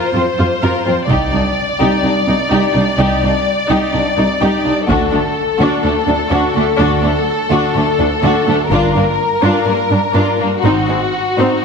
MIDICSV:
0, 0, Header, 1, 7, 480
1, 0, Start_track
1, 0, Tempo, 476190
1, 1104, Time_signature, 4, 2, 24, 8
1, 9743, Tempo, 488998
1, 11690, End_track
2, 0, Start_track
2, 0, Title_t, "Violin section"
2, 0, Program_c, 0, 48
2, 0, Note_on_c, 0, 72, 37
2, 1062, Note_off_c, 0, 72, 0
2, 1107, Note_on_c, 0, 74, 36
2, 4892, Note_off_c, 0, 74, 0
2, 4921, Note_on_c, 0, 69, 46
2, 8735, Note_off_c, 0, 69, 0
2, 8783, Note_on_c, 0, 70, 44
2, 10693, Note_on_c, 0, 66, 36
2, 10698, Note_off_c, 0, 70, 0
2, 11690, Note_off_c, 0, 66, 0
2, 11690, End_track
3, 0, Start_track
3, 0, Title_t, "Violin section"
3, 0, Program_c, 1, 48
3, 0, Note_on_c, 1, 70, 38
3, 131, Note_off_c, 1, 70, 0
3, 161, Note_on_c, 1, 60, 31
3, 242, Note_off_c, 1, 60, 0
3, 395, Note_on_c, 1, 65, 28
3, 475, Note_off_c, 1, 65, 0
3, 635, Note_on_c, 1, 70, 42
3, 853, Note_off_c, 1, 70, 0
3, 869, Note_on_c, 1, 60, 37
3, 950, Note_off_c, 1, 60, 0
3, 1110, Note_on_c, 1, 67, 44
3, 1328, Note_off_c, 1, 67, 0
3, 1347, Note_on_c, 1, 62, 31
3, 1427, Note_off_c, 1, 62, 0
3, 1811, Note_on_c, 1, 67, 39
3, 2038, Note_off_c, 1, 67, 0
3, 2058, Note_on_c, 1, 62, 29
3, 2139, Note_off_c, 1, 62, 0
3, 2305, Note_on_c, 1, 63, 30
3, 2386, Note_off_c, 1, 63, 0
3, 2537, Note_on_c, 1, 67, 43
3, 2760, Note_off_c, 1, 67, 0
3, 2770, Note_on_c, 1, 62, 37
3, 2851, Note_off_c, 1, 62, 0
3, 3011, Note_on_c, 1, 67, 47
3, 3234, Note_off_c, 1, 67, 0
3, 3266, Note_on_c, 1, 62, 30
3, 3346, Note_off_c, 1, 62, 0
3, 3729, Note_on_c, 1, 67, 49
3, 3953, Note_off_c, 1, 67, 0
3, 3976, Note_on_c, 1, 62, 31
3, 4057, Note_off_c, 1, 62, 0
3, 4210, Note_on_c, 1, 63, 33
3, 4290, Note_off_c, 1, 63, 0
3, 4452, Note_on_c, 1, 67, 46
3, 4675, Note_off_c, 1, 67, 0
3, 4685, Note_on_c, 1, 62, 41
3, 4766, Note_off_c, 1, 62, 0
3, 4924, Note_on_c, 1, 66, 48
3, 5151, Note_off_c, 1, 66, 0
3, 5166, Note_on_c, 1, 57, 33
3, 5247, Note_off_c, 1, 57, 0
3, 5644, Note_on_c, 1, 66, 45
3, 5872, Note_off_c, 1, 66, 0
3, 5892, Note_on_c, 1, 57, 34
3, 5973, Note_off_c, 1, 57, 0
3, 6128, Note_on_c, 1, 62, 36
3, 6209, Note_off_c, 1, 62, 0
3, 6362, Note_on_c, 1, 66, 48
3, 6590, Note_off_c, 1, 66, 0
3, 6603, Note_on_c, 1, 57, 39
3, 6684, Note_off_c, 1, 57, 0
3, 6844, Note_on_c, 1, 66, 53
3, 7072, Note_off_c, 1, 66, 0
3, 7073, Note_on_c, 1, 57, 38
3, 7154, Note_off_c, 1, 57, 0
3, 7569, Note_on_c, 1, 66, 55
3, 7797, Note_off_c, 1, 66, 0
3, 7815, Note_on_c, 1, 57, 35
3, 7896, Note_off_c, 1, 57, 0
3, 8060, Note_on_c, 1, 62, 34
3, 8141, Note_off_c, 1, 62, 0
3, 8299, Note_on_c, 1, 66, 47
3, 8523, Note_off_c, 1, 66, 0
3, 8548, Note_on_c, 1, 57, 44
3, 8628, Note_off_c, 1, 57, 0
3, 8780, Note_on_c, 1, 65, 56
3, 9004, Note_off_c, 1, 65, 0
3, 9030, Note_on_c, 1, 58, 33
3, 9111, Note_off_c, 1, 58, 0
3, 9509, Note_on_c, 1, 65, 46
3, 9730, Note_off_c, 1, 65, 0
3, 9756, Note_on_c, 1, 58, 29
3, 9835, Note_off_c, 1, 58, 0
3, 9981, Note_on_c, 1, 62, 31
3, 10060, Note_off_c, 1, 62, 0
3, 10221, Note_on_c, 1, 65, 40
3, 10442, Note_off_c, 1, 65, 0
3, 10461, Note_on_c, 1, 58, 37
3, 10540, Note_off_c, 1, 58, 0
3, 10702, Note_on_c, 1, 63, 39
3, 10923, Note_off_c, 1, 63, 0
3, 10946, Note_on_c, 1, 56, 28
3, 11025, Note_off_c, 1, 56, 0
3, 11428, Note_on_c, 1, 63, 37
3, 11650, Note_off_c, 1, 63, 0
3, 11690, End_track
4, 0, Start_track
4, 0, Title_t, "Viola section"
4, 0, Program_c, 2, 48
4, 0, Note_on_c, 2, 65, 47
4, 127, Note_off_c, 2, 65, 0
4, 148, Note_on_c, 2, 65, 31
4, 229, Note_off_c, 2, 65, 0
4, 388, Note_on_c, 2, 65, 34
4, 469, Note_off_c, 2, 65, 0
4, 621, Note_on_c, 2, 65, 37
4, 846, Note_off_c, 2, 65, 0
4, 861, Note_on_c, 2, 65, 32
4, 941, Note_off_c, 2, 65, 0
4, 1100, Note_on_c, 2, 63, 44
4, 1323, Note_off_c, 2, 63, 0
4, 1341, Note_on_c, 2, 63, 28
4, 1422, Note_off_c, 2, 63, 0
4, 1816, Note_on_c, 2, 63, 42
4, 2041, Note_off_c, 2, 63, 0
4, 2054, Note_on_c, 2, 63, 31
4, 2135, Note_off_c, 2, 63, 0
4, 2301, Note_on_c, 2, 63, 33
4, 2382, Note_off_c, 2, 63, 0
4, 2527, Note_on_c, 2, 63, 43
4, 2742, Note_off_c, 2, 63, 0
4, 2754, Note_on_c, 2, 63, 40
4, 2835, Note_off_c, 2, 63, 0
4, 3004, Note_on_c, 2, 63, 51
4, 3230, Note_off_c, 2, 63, 0
4, 3251, Note_on_c, 2, 63, 30
4, 3332, Note_off_c, 2, 63, 0
4, 3721, Note_on_c, 2, 63, 52
4, 3949, Note_off_c, 2, 63, 0
4, 3960, Note_on_c, 2, 63, 33
4, 4040, Note_off_c, 2, 63, 0
4, 4206, Note_on_c, 2, 63, 39
4, 4287, Note_off_c, 2, 63, 0
4, 4450, Note_on_c, 2, 63, 46
4, 4674, Note_off_c, 2, 63, 0
4, 4685, Note_on_c, 2, 63, 37
4, 4765, Note_off_c, 2, 63, 0
4, 4933, Note_on_c, 2, 62, 51
4, 5145, Note_off_c, 2, 62, 0
4, 5157, Note_on_c, 2, 62, 34
4, 5238, Note_off_c, 2, 62, 0
4, 5650, Note_on_c, 2, 62, 54
4, 5875, Note_off_c, 2, 62, 0
4, 5892, Note_on_c, 2, 62, 34
4, 5972, Note_off_c, 2, 62, 0
4, 6129, Note_on_c, 2, 62, 41
4, 6210, Note_off_c, 2, 62, 0
4, 6360, Note_on_c, 2, 62, 53
4, 6589, Note_off_c, 2, 62, 0
4, 6605, Note_on_c, 2, 62, 45
4, 6686, Note_off_c, 2, 62, 0
4, 6842, Note_on_c, 2, 62, 60
4, 7071, Note_off_c, 2, 62, 0
4, 7094, Note_on_c, 2, 62, 38
4, 7175, Note_off_c, 2, 62, 0
4, 7581, Note_on_c, 2, 62, 53
4, 7803, Note_off_c, 2, 62, 0
4, 7821, Note_on_c, 2, 62, 36
4, 7902, Note_off_c, 2, 62, 0
4, 8056, Note_on_c, 2, 62, 38
4, 8136, Note_off_c, 2, 62, 0
4, 8293, Note_on_c, 2, 62, 43
4, 8520, Note_off_c, 2, 62, 0
4, 8549, Note_on_c, 2, 62, 43
4, 8630, Note_off_c, 2, 62, 0
4, 8789, Note_on_c, 2, 62, 49
4, 9001, Note_off_c, 2, 62, 0
4, 9013, Note_on_c, 2, 62, 30
4, 9094, Note_off_c, 2, 62, 0
4, 9494, Note_on_c, 2, 62, 50
4, 9722, Note_off_c, 2, 62, 0
4, 9732, Note_on_c, 2, 62, 32
4, 9811, Note_off_c, 2, 62, 0
4, 9976, Note_on_c, 2, 62, 33
4, 10054, Note_off_c, 2, 62, 0
4, 10206, Note_on_c, 2, 62, 42
4, 10434, Note_off_c, 2, 62, 0
4, 10457, Note_on_c, 2, 62, 34
4, 10535, Note_off_c, 2, 62, 0
4, 10698, Note_on_c, 2, 60, 45
4, 10921, Note_off_c, 2, 60, 0
4, 10948, Note_on_c, 2, 60, 25
4, 11026, Note_off_c, 2, 60, 0
4, 11426, Note_on_c, 2, 60, 43
4, 11649, Note_off_c, 2, 60, 0
4, 11690, End_track
5, 0, Start_track
5, 0, Title_t, "Cello section"
5, 0, Program_c, 3, 48
5, 147, Note_on_c, 3, 41, 29
5, 228, Note_off_c, 3, 41, 0
5, 391, Note_on_c, 3, 41, 32
5, 472, Note_off_c, 3, 41, 0
5, 633, Note_on_c, 3, 41, 42
5, 713, Note_off_c, 3, 41, 0
5, 867, Note_on_c, 3, 41, 29
5, 948, Note_off_c, 3, 41, 0
5, 1104, Note_on_c, 3, 36, 45
5, 1184, Note_off_c, 3, 36, 0
5, 1343, Note_on_c, 3, 36, 31
5, 1424, Note_off_c, 3, 36, 0
5, 1818, Note_on_c, 3, 36, 44
5, 1898, Note_off_c, 3, 36, 0
5, 2053, Note_on_c, 3, 36, 30
5, 2133, Note_off_c, 3, 36, 0
5, 2290, Note_on_c, 3, 36, 32
5, 2371, Note_off_c, 3, 36, 0
5, 2537, Note_on_c, 3, 36, 46
5, 2617, Note_off_c, 3, 36, 0
5, 2772, Note_on_c, 3, 36, 32
5, 2852, Note_off_c, 3, 36, 0
5, 3012, Note_on_c, 3, 36, 47
5, 3092, Note_off_c, 3, 36, 0
5, 3255, Note_on_c, 3, 36, 34
5, 3336, Note_off_c, 3, 36, 0
5, 3732, Note_on_c, 3, 36, 46
5, 3813, Note_off_c, 3, 36, 0
5, 3967, Note_on_c, 3, 36, 33
5, 4048, Note_off_c, 3, 36, 0
5, 4213, Note_on_c, 3, 36, 37
5, 4294, Note_off_c, 3, 36, 0
5, 4453, Note_on_c, 3, 36, 51
5, 4534, Note_off_c, 3, 36, 0
5, 4688, Note_on_c, 3, 36, 34
5, 4769, Note_off_c, 3, 36, 0
5, 4932, Note_on_c, 3, 38, 52
5, 5012, Note_off_c, 3, 38, 0
5, 5165, Note_on_c, 3, 38, 39
5, 5246, Note_off_c, 3, 38, 0
5, 5647, Note_on_c, 3, 38, 50
5, 5727, Note_off_c, 3, 38, 0
5, 5887, Note_on_c, 3, 38, 33
5, 5967, Note_off_c, 3, 38, 0
5, 6125, Note_on_c, 3, 38, 39
5, 6205, Note_off_c, 3, 38, 0
5, 6367, Note_on_c, 3, 38, 56
5, 6448, Note_off_c, 3, 38, 0
5, 6610, Note_on_c, 3, 38, 36
5, 6691, Note_off_c, 3, 38, 0
5, 6844, Note_on_c, 3, 38, 51
5, 6925, Note_off_c, 3, 38, 0
5, 7090, Note_on_c, 3, 38, 38
5, 7171, Note_off_c, 3, 38, 0
5, 7564, Note_on_c, 3, 38, 49
5, 7644, Note_off_c, 3, 38, 0
5, 7809, Note_on_c, 3, 38, 36
5, 7890, Note_off_c, 3, 38, 0
5, 8052, Note_on_c, 3, 38, 38
5, 8133, Note_off_c, 3, 38, 0
5, 8297, Note_on_c, 3, 38, 53
5, 8378, Note_off_c, 3, 38, 0
5, 8537, Note_on_c, 3, 38, 34
5, 8618, Note_off_c, 3, 38, 0
5, 8778, Note_on_c, 3, 43, 52
5, 8858, Note_off_c, 3, 43, 0
5, 9020, Note_on_c, 3, 43, 35
5, 9101, Note_off_c, 3, 43, 0
5, 9497, Note_on_c, 3, 43, 48
5, 9578, Note_off_c, 3, 43, 0
5, 9737, Note_on_c, 3, 43, 29
5, 9816, Note_off_c, 3, 43, 0
5, 9973, Note_on_c, 3, 43, 34
5, 10051, Note_off_c, 3, 43, 0
5, 10210, Note_on_c, 3, 43, 46
5, 10289, Note_off_c, 3, 43, 0
5, 10448, Note_on_c, 3, 43, 29
5, 10527, Note_off_c, 3, 43, 0
5, 10686, Note_on_c, 3, 44, 43
5, 10765, Note_off_c, 3, 44, 0
5, 10933, Note_on_c, 3, 44, 31
5, 11011, Note_off_c, 3, 44, 0
5, 11422, Note_on_c, 3, 44, 39
5, 11501, Note_off_c, 3, 44, 0
5, 11690, End_track
6, 0, Start_track
6, 0, Title_t, "Double bass section"
6, 0, Program_c, 4, 48
6, 1096, Note_on_c, 4, 36, 44
6, 1321, Note_off_c, 4, 36, 0
6, 3005, Note_on_c, 4, 36, 49
6, 3231, Note_off_c, 4, 36, 0
6, 4924, Note_on_c, 4, 38, 54
6, 5151, Note_off_c, 4, 38, 0
6, 6847, Note_on_c, 4, 38, 55
6, 7074, Note_off_c, 4, 38, 0
6, 8772, Note_on_c, 4, 31, 51
6, 8999, Note_off_c, 4, 31, 0
6, 10698, Note_on_c, 4, 32, 41
6, 10922, Note_off_c, 4, 32, 0
6, 11690, End_track
7, 0, Start_track
7, 0, Title_t, "Taiko and cinematic ensemble drums"
7, 1111, Note_on_c, 9, 41, 39
7, 1212, Note_off_c, 9, 41, 0
7, 4931, Note_on_c, 9, 41, 43
7, 5032, Note_off_c, 9, 41, 0
7, 8778, Note_on_c, 9, 41, 44
7, 8879, Note_off_c, 9, 41, 0
7, 11690, End_track
0, 0, End_of_file